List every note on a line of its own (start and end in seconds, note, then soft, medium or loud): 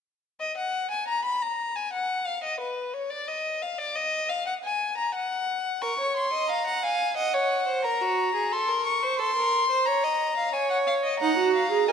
0.40 0.56 D#5 medium
0.57 0.90 F#5 medium
0.91 1.07 G#5 medium
1.08 1.24 A#5 medium
1.25 1.44 B5 medium
1.42 1.78 A#5 medium
1.76 1.92 G#5 medium
1.93 2.28 F#5 medium
2.26 2.43 F5 medium
2.44 2.60 D#5 medium
2.60 2.95 B4 medium
2.94 3.12 C#5 medium
3.10 3.30 D5 medium
3.28 3.63 D#5 medium
3.62 3.80 F5 medium
3.79 3.97 D5 medium
3.96 4.31 D#5 medium
4.29 4.46 F5 medium
4.47 4.53 F#5 medium
4.64 4.97 G#5 medium
4.98 5.14 A#5 medium
5.15 5.83 F#5 medium
5.82 5.98 A#4 medium
5.82 6.16 C#6 medium
6.00 6.33 C#5 medium
6.17 6.49 C6 medium
6.33 6.51 D#5 medium
6.49 6.66 F5 medium
6.49 6.83 A#5 medium
6.67 6.85 F#5 medium
6.83 7.16 F5 medium
6.83 7.16 G#5 medium
7.17 7.35 D#5 medium
7.17 7.83 F#5 medium
7.33 7.67 C#5 medium
7.67 7.86 C5 medium
7.84 8.02 A#4 medium
7.84 8.54 A#5 medium
8.01 8.34 F#4 medium
8.35 8.53 G#4 medium
8.52 8.70 A4 medium
8.52 8.85 C6 medium
8.68 9.04 A#4 medium
8.86 9.18 C#6 medium
9.02 9.21 C5 medium
9.19 9.35 A4 medium
9.19 9.88 C6 medium
9.36 9.69 A#4 medium
9.70 9.88 C5 medium
9.86 10.05 C#5 medium
9.86 10.55 A#5 medium
10.04 10.37 D#5 medium
10.38 10.54 F5 medium
10.53 11.20 C#5 medium
10.53 10.70 G#5 medium
10.70 10.77 F#5 medium
10.87 10.94 F5 medium
11.04 11.20 D#5 medium
11.20 11.37 D#4 medium
11.20 11.55 F#5 medium
11.20 11.89 A#5 medium
11.38 11.71 F#4 medium
11.55 11.88 F5 medium
11.71 11.88 G#4 medium
11.88 11.92 A#4 medium
11.88 11.92 D#5 medium
11.88 11.92 G#5 medium